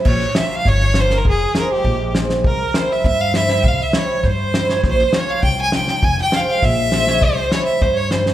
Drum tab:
CC |x-------|--------|--------|--------|
SD |-oo-oooo|--o---oo|--o-o-oo|--o-o-oo|
BD |o---o---|o---o---|o---o---|o---o---|

CC |--------|--------|--------|
SD |ooo---oo|-oo-o-oo|ooo-o-oo|
BD |o---o---|o---o---|o---o---|